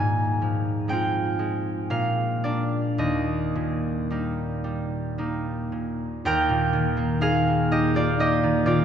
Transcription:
Already playing: G#2 G#5
0.42 F3
0.88 G#3 C4 G5
0.93 F4
1.39 G#3
1.90 A#2 F5
2.44 A#3 D4 D5
2.98 D#2 D#5
3.55 A#2
4.10 G3 A#3 D#4
4.64 G3
5.18 G3 A#3 D#4
5.72 A#2
6.25 D#2 A#4 G5
6.49 A#2
6.73 D#3
6.97 A#3
7.21 D#4 G#4 F5
7.47 A#3
7.71 D#4 G4 D#5
7.95 A#3 F4 D5
8.19 D#4 G4 D#5
8.43 D#3
8.66 A#2 F4 D5

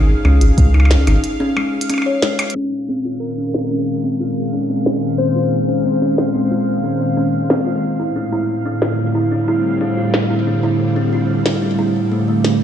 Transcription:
Already playing: G#1 G#4 F5
0.25 C#2 C#4, percussion blips
0.41 G#1 F4, closed hi-hat
0.58 C#2, kick, closed hi-hat
0.74 D#4, percussion blips
0.80 percussion blips
0.85 percussion blips
0.91 C#4, snare
1.07 G#1 D#4, closed hi-hat, percussion blips
1.24 closed hi-hat
1.40 C#4
1.57 G#3, percussion blips
1.81 closed hi-hat
1.90 C#4, closed hi-hat, percussion blips
1.94 percussion blips
1.98 percussion blips
2.02 percussion blips
2.06 C#5
2.22 G#3, snare
2.39 closed hi-hat, percussion blips
2.50 closed hi-hat
2.56 A#2 C#4 F5
2.61 closed hi-hat
2.72 G#3
2.89 D#3 C4
3.05 F4
3.20 A#4
3.38 C#4
3.54 C4, snare
3.71 C#4
4.04 C4
4.20 F4
4.53 C#4
4.70 C4
4.86 C#4, snare
5.18 C4 C5
5.36 F4
5.69 C#4
5.85 C4
6.02 C#4
6.18 snare
6.35 C4
6.51 F4
6.84 C#4
7.01 C4
7.17 C#4
7.50 C4, snare
7.67 F4
7.83 A2
8.00 E4
8.16 D4
8.32 E4
8.45 D3
8.51 G3
8.66 D4
8.75 C4
8.82 F4, snare
9.15 E4
9.31 D4
9.48 E4
9.81 D4
9.97 F4
10.14 snare
10.30 E4
10.47 D4
10.63 E4
10.96 D4
11.13 F4
11.46 E4, snare
11.62 D4
11.79 E4
12.12 A3
12.28 A3
12.45 snare

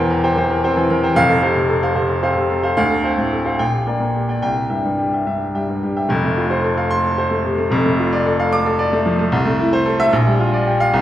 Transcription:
Already playing: E1 E2 E3 A#4 C5 G5
0.10 A#4
0.24 C5 G5
0.37 E3 C5
0.50 A#4
0.64 C4 C5 G5
0.77 E3
0.90 E3 A#4
1.03 C5 G5
1.15 F1 F2 F5
1.29 A4
1.42 C3 C5 F5
1.56 C3
1.69 A4
1.83 C5 F5
1.95 C3 C5
2.09 A4
2.23 C4 C5 F5
2.35 C3
2.50 C3 A4
2.63 C5 F5
2.77 D2 F5
2.90 A4
3.04 C4 C5 F5
3.18 A2
3.32 A4
3.45 C5 F5
3.59 A#1 G5
3.73 G4
3.87 A#3 D5 G5
4.00 A#2
4.15 G4
4.29 D5 G5
4.42 C2 G5
4.56 G4
4.70 G2 E5 G5
4.85 G2
4.98 G4
5.13 E5 G5
5.27 G2 E5
5.41 G4
5.55 G3 E5 G5
5.68 G2
5.83 G2 G4
5.97 E5 G5
6.09 F1 F2
6.24 A3
6.37 F4
6.50 C5
6.64 A4
6.77 F5
6.91 C6
7.04 A4
7.18 C5
7.31 A3
7.45 C3
7.58 A3
7.70 F1 F2
7.86 A3
7.99 F4
8.12 D5
8.26 A4
8.39 F5
8.53 D6
8.66 A4
8.79 D5
8.93 A3
9.06 F3
9.19 A3
9.32 C2
9.45 A3
9.59 E4
9.73 C5
9.86 A4
10.00 E5
10.13 A#1
10.27 G3
10.40 F4
10.53 D5
10.67 G4
10.80 F5
10.93 C2

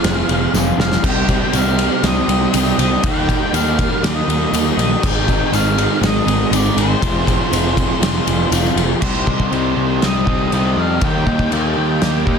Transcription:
Already playing: F3 C4 F4 G#4 F5 C6 D#6
0.04 F1 F2 C3 F3 C4 F4 G#4, snare, ride
0.28 F1 F2 C3 F3 C4 F4 G#4, ride
0.54 F1 F2 C3 F3 C4 F4 G#4, snare, tambourine
0.78 F1 F2 C3 F3 C4 F4 G#4 F5, snare
0.92 snare
1.03 C2 C3 G3 C4 D#4 G4 D#5 G5, kick, crash
1.28 C3 G3 C4 D#4 G4, kick, ride
1.52 C2 C3 G3 C4 D#4 F5, ride, tambourine
1.57 G4
1.78 C3 G3 C4 D#4 G4, ride
2.02 C2 C3 G3 C4 D#4 D#5, snare, ride
2.06 G4
2.27 C2 C3 G3 C4 D#4 G4, ride
2.32 C4
2.53 C2 C3 G3 C4 D#4 G4, ride, tambourine
2.78 C2 C3 G3 C4 D#4 G4 D#5, ride
3.02 D#2 D#3 G3 A#3 D#4 G4 G5 A#5 D6, kick, ride
3.27 D#3 A#3 D#4 G4, kick, ride
3.53 D#2 D#3 G3 A#3 D#4 G4 F5, ride, tambourine
3.78 D#3 A#3 D#4 G4, kick, ride
4.03 D#2 D#3 G3 A#3 D#4 G4 D#5, snare, ride
4.28 D#2 D#3 A#3 D#4 G4, ride
4.52 D#2 D#3 G3 A#3 D#4 G4, ride, tambourine
4.77 A#1 D#3 A#3 D#4 G4 D#5, ride
5.02 G#1 G#2 D#3 G#3 C4 D#4 G#4 C6, kick, crash
5.06 G5
5.27 G#2 D#3 G#3 C4 D#4 G#4, kick, ride
5.52 G#1 G#2 D#3 G#3 C4 D#4 G#4 F5, ride, tambourine
5.77 G#2 D#3 G#3 C4 D#4 G#4, ride
6.01 G#1 G#2 D#3 G#3 C4 D#4 G#4 D#5, snare, ride
6.26 G#1 G#2 D#3 G#3 C4 D#4 G#4, ride
6.51 G#1 G#2 D#3 G#3 C4 D#4 G#4 D5, ride, tambourine
6.76 G#1 G#2 D#3 G#3 C4 D#4 G#4 C5, ride
7.01 F1 F2 C3 F3 C4 F4 G#4 G#5 C6, kick, ride
7.26 F2 C3 F3 C4 F4 G#4, kick, ride
7.51 F1 F2 C3 F3 C4 F4 G#4, ride, tambourine
7.76 F2 C3 F3 C4 F4 G#4, kick, ride
8.01 F1 F2 C3 F3 C4 F4 G#4, snare, ride
8.26 F1 F2 C3 F3 C4 F4 G#4, ride
8.50 F1 F2 C3 F3 C4 F4 G#4, ride, tambourine
8.65 snare
8.76 F1 F2 C3 F3 C4 F4 G#4, ride
9.01 C2 C3 G3 C4 D#4 G4 C5 D#5 C6 D#6, kick, crash
9.26 C2 C4 D#4 G4, kick
9.40 kick
9.51 C2 G3 C4 D#4 G4, crash
9.77 C2
10.02 C2 C3 G3 C4 D#4 G4 D#5, snare, crash
10.26 C2 C3 G3 C4 D#4 G4, kick
10.51 C2 C3 G3 C4 D#4 G4, crash
10.76 F2 C4 D#4 G4 F5
11.01 D#2 D#3 G3 A#3 D#4 G4 A#5 D6, kick, crash
11.05 G5
11.26 D#2 A#3 D#4 G4, kick
11.39 kick
11.52 D#2 G3 A#3 D#4 G4, crash
11.77 D#2
12.01 D#2 D#3 G3 A#3 D#4 G4, snare, crash
12.26 D#2 D#3 A#3 D#4 G4, kick

